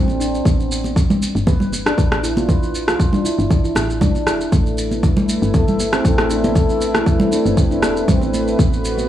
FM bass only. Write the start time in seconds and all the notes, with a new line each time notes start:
Already playing: A1
0.45 A1
1.35 G1
1.98 A1
3.39 G1
3.76 A1
4.27 E1
4.52 A1
5.42 G1
6.05 A1
7.46 G1
7.83 E1
8.08 A1
8.59 A1